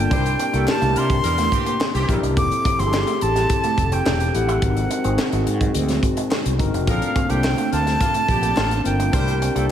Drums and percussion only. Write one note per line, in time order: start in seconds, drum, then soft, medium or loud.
0.11 kick loud
0.11 closed hi-hat medium
0.26 closed hi-hat medium
0.39 closed hi-hat medium
0.54 closed hi-hat soft
0.68 snare loud
0.68 clap loud
0.82 closed hi-hat soft
0.96 closed hi-hat medium
1.10 kick medium
1.10 closed hi-hat soft
1.24 closed hi-hat loud
1.38 snare soft
1.38 closed hi-hat medium
1.52 kick medium
1.52 closed hi-hat medium
1.66 closed hi-hat medium
1.81 snare loud
1.81 clap medium
1.95 closed hi-hat medium
2.09 kick medium
2.09 closed hi-hat medium
2.23 closed hi-hat medium
2.37 kick loud
2.37 closed hi-hat medium
2.51 closed hi-hat medium
2.65 kick loud
2.65 closed hi-hat medium
2.79 closed hi-hat medium
2.94 snare loud
2.94 clap loud
3.07 closed hi-hat medium
3.21 closed hi-hat medium
3.36 snare soft
3.36 closed hi-hat soft
3.50 kick loud
3.50 closed hi-hat loud
3.64 closed hi-hat medium
3.78 kick medium
3.78 closed hi-hat medium
3.92 closed hi-hat medium
4.06 snare loud
4.06 clap medium
4.20 closed hi-hat medium
4.35 closed hi-hat medium
4.49 closed hi-hat medium
4.62 kick loud
4.62 closed hi-hat medium
4.77 closed hi-hat medium
4.91 closed hi-hat medium
5.04 closed hi-hat medium
5.18 snare loud
5.18 clap loud
5.32 closed hi-hat medium
5.47 closed hi-hat medium
5.61 kick medium
5.61 closed hi-hat medium
5.75 closed hi-hat loud
5.88 snare soft
5.88 closed hi-hat medium
6.03 kick medium
6.03 closed hi-hat medium
6.17 closed hi-hat medium
6.31 snare loud
6.31 clap medium
6.46 closed hi-hat medium
6.59 kick medium
6.59 closed hi-hat medium
6.74 closed hi-hat medium
6.87 kick loud
6.87 closed hi-hat medium
7.02 closed hi-hat medium
7.16 kick loud
7.16 closed hi-hat medium
7.30 closed hi-hat medium
7.44 snare loud
7.44 clap loud
7.58 closed hi-hat medium
7.73 closed hi-hat medium
7.87 snare soft
7.87 closed hi-hat medium
8.01 kick loud
8.01 closed hi-hat loud
8.14 closed hi-hat medium
8.28 kick medium
8.28 closed hi-hat medium
8.43 closed hi-hat medium
8.57 snare loud
8.57 clap medium
8.71 closed hi-hat medium
8.85 closed hi-hat medium
9.00 closed hi-hat medium
9.13 kick loud
9.13 closed hi-hat medium
9.28 closed hi-hat medium
9.42 closed hi-hat medium
9.56 closed hi-hat soft